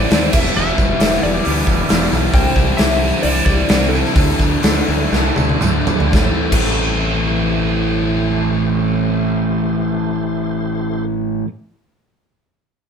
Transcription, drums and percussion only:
0.11 snare loud
0.11 open hi-hat medium
0.11 tambourine loud
0.33 kick loud
0.33 tambourine medium
0.33 crash loud
0.46 snare soft
0.56 tambourine medium
0.78 kick medium
0.78 tambourine medium
1.00 snare loud
1.00 open hi-hat medium
1.00 tambourine medium
1.24 tambourine soft
1.45 open hi-hat medium
1.45 tambourine soft
1.67 kick medium
1.67 tambourine medium
1.89 snare loud
1.89 open hi-hat medium
1.89 tambourine loud
2.13 tambourine medium
2.34 kick loud
2.34 open hi-hat medium
2.34 tambourine medium
2.56 kick medium
2.56 tambourine medium
2.78 snare loud
2.78 open hi-hat medium
2.78 tambourine medium
3.04 tambourine soft
3.23 open hi-hat medium
3.23 tambourine soft
3.46 kick medium
3.46 tambourine medium
3.69 snare loud
3.69 open hi-hat medium
3.73 tambourine loud
3.95 tambourine medium
4.05 snare soft
4.16 kick loud
4.16 open hi-hat medium
4.16 tambourine medium
4.40 kick medium
4.40 tambourine medium
4.63 snare loud
4.63 open hi-hat medium
4.63 tambourine loud
4.88 tambourine soft
5.13 snare medium
5.13 tambourine soft
5.36 high tom medium
5.36 tambourine medium
5.49 high tom medium
5.61 mid tom medium
5.61 tambourine loud
5.87 floor tom loud
5.87 tambourine medium
6.00 floor tom medium
6.13 kick loud
6.13 snare loud
6.13 tambourine medium
6.52 kick loud
6.52 crash medium
6.52 tambourine medium

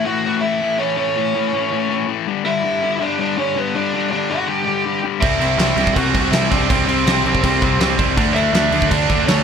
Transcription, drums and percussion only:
5.22 kick loud
5.22 crash medium
5.41 crash medium
5.59 snare loud
5.59 crash medium
5.77 crash medium
5.87 kick loud
5.96 kick loud
5.96 crash loud
6.15 kick medium
6.15 crash medium
6.33 snare loud
6.33 crash medium
6.52 kick loud
6.52 crash medium
6.70 kick loud
6.70 crash medium
6.89 crash medium
7.07 snare loud
7.07 crash medium
7.26 crash medium
7.35 kick loud
7.44 kick loud
7.44 crash medium
7.62 kick medium
7.62 crash medium
7.81 snare loud
7.81 crash medium
7.99 kick loud
7.99 crash medium
8.18 kick loud
8.18 crash medium
8.36 crash medium
8.54 snare loud
8.54 crash medium
8.72 crash medium
8.82 kick medium
8.91 kick loud
8.91 crash medium
9.09 kick medium
9.09 crash medium
9.28 snare loud
9.28 crash medium

